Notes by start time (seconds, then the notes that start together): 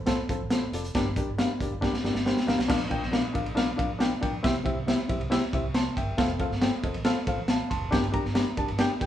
Already playing: A1
0.06 C4 F4 A4 C5, kick, snare, closed hi-hat
0.29 A1 C4 F4 A4 C5, kick, closed hi-hat
0.40 A1
0.50 C4 F4 A4 C5, snare, closed hi-hat
0.72 F1 C4 F4 A4 D5, closed hi-hat
0.84 closed hi-hat
0.95 G1 G2 D4 G4 A#4 D5, kick, snare, closed hi-hat
1.16 D4 G4 A#4 D5, kick, closed hi-hat
1.27 G1
1.38 D4 G4 A#4 F5, snare, closed hi-hat
1.60 F1 D4 G4 A#4 D5, kick, closed hi-hat
1.71 G1
1.81 D4 G4 A#4 D5, kick, snare
1.94 snare
2.04 G1 D4 G4 A#4 D5, snare
2.15 G1, snare
2.26 D4 G4 A#4 C5 G5, snare
2.37 snare
2.47 A1 D4 G4 A#4 F5 A#5, snare
2.59 A#1, snare
2.68 A#1 A#2 D4 F4 A#4 D5 F5, kick, snare, crash
2.81 ride
2.89 D4 F4 A#4 D5 G5, kick, ride
3.02 A#1, snare
3.11 D4 F4 A#4 D5 F5, snare, ride
3.33 A1 D4 F4 A#4 D5 F5, kick, ride
3.46 A#1, ride
3.55 D4 F4 A#4 D5 F5, snare, ride
3.77 A#1 D4 F4 A#4 D5 F5, kick, ride
3.99 D4 F4 A#4 D5 G5, snare, ride
4.21 A#1 D4 F4 A#4 D5 G5, kick, ride
4.43 C2 C3 C4 E4 G4 C5 E5, kick, snare, ride
4.56 ride
4.64 C4 E4 G4 C5 E5, kick, ride
4.77 C2
4.86 C4 E4 G4 C5 E5, snare, ride
5.08 A#1 C4 E4 G4 C5 E5, kick, ride
5.20 C2, ride
5.30 C4 E4 G4 C5 E5, snare, ride
5.53 C2 C4 E4 G4 C5 E5, kick, ride
5.63 C2
5.74 A5 C6, snare, ride
5.97 G1 E5 G5, kick, ride
6.17 F1 C4 F4 A4 C5 F5, kick, snare, ride
6.30 ride
6.39 C4 F4 A4 C5 F5, kick, ride
6.51 G1, snare
6.61 C4 F4 A4 C5 G5, snare, ride
6.83 F1 C4 F4 A4 C5 D#5, kick, ride
6.94 A1, ride
7.05 C4 F4 A4 C5 F5, snare, ride
7.26 A1 C4 F4 A4 C5 F5, kick, ride
7.37 A1
7.48 F5 A5, snare, ride
7.70 F1 A5 C6, kick, ride
7.91 G1 G2 D4 G4 A#4 D5 G5, kick, snare, ride
8.04 ride
8.12 D4 G4 A#4 D5 A#5, kick, ride
8.24 G1, snare
8.34 D4 G4 A#4 D5 A#5, snare, ride
8.57 F1 D4 G4 A#4 D5 A5, kick, ride
8.68 G1, ride
8.79 D4 G4 A#4 D5 G5, snare, ride
9.00 G1 D4 G4 A#4 D5 G5, kick, ride